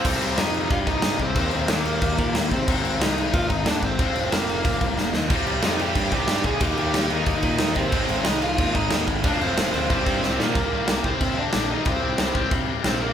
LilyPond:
<<
  \new Staff \with { instrumentName = "Lead electric guitar" } { \time 4/4 \key c \minor \tempo 4 = 183 <c' c''>4 <ees' ees''>4 <f' f''>8 <ees' ees''>4 <c' c''>8 | <c' c''>8 <c' c''>8 <bes bes'>2~ <bes bes'>8 <c' c''>8~ | <c' c''>4 <ees' ees''>8 <ees' ees''>8 <f' f''>8 <ees' ees''>8 <d' d''>8 <c' c''>8 | <c' c''>4 <bes bes'>2~ <bes bes'>8 r8 |
r4 <ees' ees''>8 <g' g''>4 <g' g''>4 <aes' aes''>8 | <g' g''>8 <g' g''>4 <ees' ees''>2 <c' c''>8~ | <c' c''>4 <ees' ees''>8 <f' f''>4 <ees' ees''>4 r8 | <d' d''>8 <c' c''>4 <c' c''>8 <c' c''>4 <c' c''>8 <bes bes'>8~ |
<bes bes'>4. <c' c''>4 <d' d''>4 <ees' ees''>8 | <c' c''>4 <c' c''>4 r4 <c' c''>8 <bes bes'>8 | }
  \new Staff \with { instrumentName = "Distorted electric guitar" } { \clef bass \time 4/4 \key c \minor <c g c' ees'>1 | <ees g bes ees'>1 | <aes, ees aes c' ees'>1 | <f aes c' f'>1 |
<c g c' ees'>1 | <ees g bes ees'>1 | <aes, ees aes c' ees'>1 | <f aes c' f'>2 <c ees g c' g'>2 |
<c ees g c' g'>8 <c ees g c' g'>8 <c ees g c' g'>8 <c ees g c' g'>8 <c ees g c' g'>8 <c ees g c' g'>8 <c ees g c' g'>8 <c ees g c' g'>8 | <c ees g c' g'>8 <c ees g c' g'>8 <c ees g c' g'>8 <c ees g c' g'>8 <c ees g c' g'>8 <c ees g c' g'>8 <c ees g c' g'>8 <c ees g c' g'>8 | }
  \new Staff \with { instrumentName = "Distorted electric guitar" } { \clef bass \time 4/4 \key c \minor r1 | r1 | r1 | r1 |
<c g c'>1 | <ees bes ees'>1 | <aes, ees aes>1 | <f, c f>2 <c g c'>2 |
r1 | r1 | }
  \new Staff \with { instrumentName = "Picked electric bass" } { \clef bass \time 4/4 \key c \minor c,8 c,8 f,4 g,8 c,8 g,8 c,8 | ees,8 ees,8 ees,8 ees,8 ees,8 bes,8 ees,8 c8 | aes,,8 aes,,8 c,4 ees,8 aes,,8 ees,8 aes,,8 | f,,8 f,,8 f,,8 f,,8 f,,8 c,8 f,,8 ees,8 |
c,8 c,8 f,4 g,8 c,8 g,8 c,8 | ees,8 ees,8 ees,8 ees,8 ees,8 bes,8 ees,8 c8 | aes,,8 aes,,8 c,4 ees,8 aes,,8 ees,8 aes,,8 | f,,8 f,,8 f,,8 d,8 c,8 g,8 c,8 bes,8 |
c,8 c,8 c,8 c,8 c4 bes,,4 | c,8 c,8 c,8 c,8 c4 bes,,4 | }
  \new DrumStaff \with { instrumentName = "Drums" } \drummode { \time 4/4 <cymc bd>8 cymc8 <cymc sn>8 cymc8 <cymc bd>8 <cymc bd>8 <cymc sn>8 <cymc bd>8 | <cymc bd>8 cymc8 <cymc sn>8 cymc8 <cymc bd>8 <cymc bd>8 <cymc sn>8 <cymc bd>8 | <cymc bd>8 cymc8 <cymc sn>8 cymc8 <cymc bd>8 <cymc bd>8 <cymc sn>8 <cymc bd>8 | <cymc bd>8 cymc8 <cymc sn>8 cymc8 <cymc bd>8 <cymc bd>8 sn8 sn8 |
<cymc bd>8 cymc8 <cymc sn>8 cymc8 <cymc bd>8 <cymc bd>8 <cymc sn>8 <cymc bd>8 | <cymc bd>8 cymc8 <cymc sn>8 cymc8 <cymc bd>8 <cymc bd>8 <cymc sn>8 <cymc bd>8 | <cymc bd>8 cymc8 <cymc sn>8 cymc8 <cymc bd>8 <cymc bd>8 <cymc sn>8 <cymc bd>8 | <cymc bd>8 cymc8 <cymc sn>8 cymc8 <cymc bd>8 <cymc bd>8 sn8 sn8 |
<cymc bd>4 <cymc sn>8 bd8 <cymc bd>4 <cymc sn>4 | <cymc bd>4 <cymc sn>8 bd8 <cymc bd>4 <cymc sn>4 | }
>>